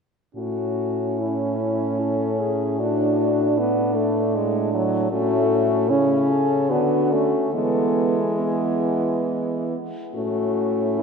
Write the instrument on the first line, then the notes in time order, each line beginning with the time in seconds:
french horn
0.35 A2 C#4 F#4
1.19 C#4 E4
2.00 A4
2.40 G#4
2.79 D4 F#4
3.58 B3 D4
3.95 A3
4.35 G#3
4.74 F#3
5.11 A2 A3 C#4 F#4
5.90 C#3 C#4 E4
6.31 A4
6.70 D3 B3 D4 F#4
7.11 A3 C#4
7.52 E3 G#3 B3 A4
8.37 B3 G#4
10.15 A2 A3 C#4 F#4
10.99 E4